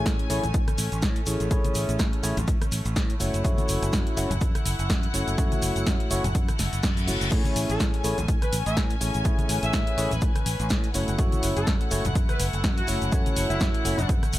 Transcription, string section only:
0, 0, Header, 1, 2, 480
1, 0, Start_track
1, 0, Key_signature, 3, "major"
1, 0, Tempo, 483871
1, 1498, Time_signature, 4, 2, 24, 8
1, 14274, End_track
2, 0, Start_track
2, 0, Title_t, "String section"
2, 0, Program_c, 0, 48
2, 0, Note_on_c, 0, 57, 77
2, 0, Note_on_c, 0, 61, 83
2, 0, Note_on_c, 0, 80, 93
2, 1478, Note_off_c, 0, 80, 0
2, 3141, Note_off_c, 0, 61, 0
2, 3177, Note_on_c, 0, 64, 83
2, 3179, Note_on_c, 0, 78, 92
2, 7217, Note_off_c, 0, 57, 0
2, 7218, Note_off_c, 0, 64, 0
2, 7219, Note_off_c, 0, 78, 0
2, 7256, Note_on_c, 0, 57, 76
2, 7256, Note_on_c, 0, 61, 84
2, 7256, Note_on_c, 0, 80, 93
2, 9158, Note_off_c, 0, 57, 0
2, 9180, Note_on_c, 0, 71, 81
2, 10821, Note_off_c, 0, 61, 0
2, 10821, Note_off_c, 0, 80, 0
2, 10842, Note_off_c, 0, 71, 0
2, 10858, Note_on_c, 0, 64, 85
2, 10859, Note_on_c, 0, 57, 79
2, 10859, Note_on_c, 0, 78, 94
2, 14274, Note_off_c, 0, 57, 0
2, 14274, Note_off_c, 0, 64, 0
2, 14274, Note_off_c, 0, 78, 0
2, 14274, End_track
0, 0, End_of_file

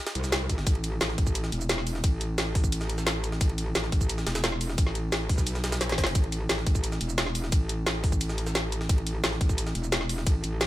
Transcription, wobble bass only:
0, 0, Header, 1, 2, 480
1, 0, Start_track
1, 0, Key_signature, 0, "minor"
1, 0, Tempo, 342857
1, 932, Time_signature, 4, 2, 24, 8
1, 14937, End_track
2, 0, Start_track
2, 0, Title_t, "Wobble bass"
2, 0, Program_c, 0, 39
2, 213, Note_on_c, 0, 36, 105
2, 913, Note_off_c, 0, 36, 0
2, 933, Note_on_c, 0, 33, 98
2, 1393, Note_off_c, 0, 33, 0
2, 1413, Note_on_c, 0, 33, 98
2, 1633, Note_off_c, 0, 33, 0
2, 1653, Note_on_c, 0, 33, 98
2, 2113, Note_off_c, 0, 33, 0
2, 2133, Note_on_c, 0, 28, 101
2, 2833, Note_off_c, 0, 28, 0
2, 2853, Note_on_c, 0, 33, 96
2, 4753, Note_off_c, 0, 33, 0
2, 4772, Note_on_c, 0, 33, 100
2, 5233, Note_off_c, 0, 33, 0
2, 5252, Note_on_c, 0, 33, 95
2, 5473, Note_off_c, 0, 33, 0
2, 5492, Note_on_c, 0, 33, 97
2, 5953, Note_off_c, 0, 33, 0
2, 5972, Note_on_c, 0, 28, 103
2, 6673, Note_off_c, 0, 28, 0
2, 6692, Note_on_c, 0, 33, 97
2, 7393, Note_off_c, 0, 33, 0
2, 7412, Note_on_c, 0, 35, 98
2, 8593, Note_off_c, 0, 35, 0
2, 8612, Note_on_c, 0, 33, 94
2, 9073, Note_off_c, 0, 33, 0
2, 9092, Note_on_c, 0, 33, 94
2, 9313, Note_off_c, 0, 33, 0
2, 9332, Note_on_c, 0, 33, 99
2, 9793, Note_off_c, 0, 33, 0
2, 9812, Note_on_c, 0, 28, 100
2, 10513, Note_off_c, 0, 28, 0
2, 10531, Note_on_c, 0, 33, 97
2, 12432, Note_off_c, 0, 33, 0
2, 12451, Note_on_c, 0, 33, 96
2, 12912, Note_off_c, 0, 33, 0
2, 12932, Note_on_c, 0, 33, 96
2, 13153, Note_off_c, 0, 33, 0
2, 13172, Note_on_c, 0, 33, 95
2, 13633, Note_off_c, 0, 33, 0
2, 13652, Note_on_c, 0, 28, 102
2, 14353, Note_off_c, 0, 28, 0
2, 14372, Note_on_c, 0, 33, 98
2, 14593, Note_off_c, 0, 33, 0
2, 14612, Note_on_c, 0, 33, 99
2, 14937, Note_off_c, 0, 33, 0
2, 14937, End_track
0, 0, End_of_file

